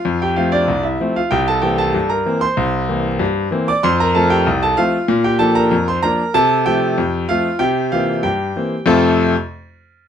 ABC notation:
X:1
M:2/4
L:1/16
Q:1/4=95
K:F
V:1 name="Grand piano"
[Ff] [Gg] [Ff] [Dd]2 [Ee]2 [Ff] | [Gg] [Aa] [Gg] [Aa]2 [Bb]2 [cc']- | [cc']6- [cc'] [dd'] | [cc'] [Bb] [Aa] [Gg]2 [Aa] [Ff]2- |
[Ff] [Gg] [Aa] [Bb]2 [cc'] [Bb]2 | [Aa]2 [Gg]4 [Ff]2 | [Gg]2 [Ff]2 [Gg]4 | [F,,C,A,CFAf]2 z6 |]
V:2 name="Grand piano" clef=bass
F,,2 [F,A,C]2 C,,2 [F,A,C]2 | C,,2 [E,B,C]2 G,,2 [E,B,C]2 | C,,2 [E,B,C]2 G,,2 [E,B,C]2 | F,,2 [F,A,C]2 C,,2 [F,A,C]2 |
B,,2 [F,B,D]2 F,,2 [F,B,D]2 | C,2 [F,A,C]2 F,,2 [F,A,C]2 | C,2 [E,B,C]2 G,,2 [E,B,C]2 | z8 |]